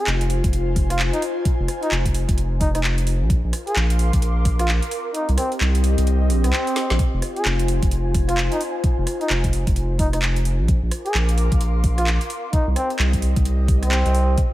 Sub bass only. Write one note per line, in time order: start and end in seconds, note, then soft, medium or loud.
0.07 0.41 F1 medium
0.44 1.11 F1 loud
1.59 1.67 F1 loud
1.91 2.26 F1 medium
2.29 3.23 F1 loud
3.21 3.41 A#1 loud
3.44 3.52 A#1 loud
3.76 4.11 A#1 medium
4.13 4.80 A#1 loud
5.29 5.37 C2 loud
5.61 5.95 C2 medium
5.98 6.31 C2 loud
6.30 6.46 A#1 medium
6.44 6.52 C2 medium
6.90 6.98 A#1 medium
7.13 7.21 F1 loud
7.45 7.80 F1 medium
7.83 8.49 F1 loud
8.98 9.06 F1 medium
9.30 9.64 F1 medium
9.67 10.61 F1 loud
10.59 10.79 A#1 loud
10.83 10.90 A#1 loud
11.14 11.49 A#1 medium
11.52 12.18 A#1 loud
12.67 12.75 C2 loud
12.99 13.34 C2 medium
13.36 14.03 C2 loud
14.06 14.36 C2 medium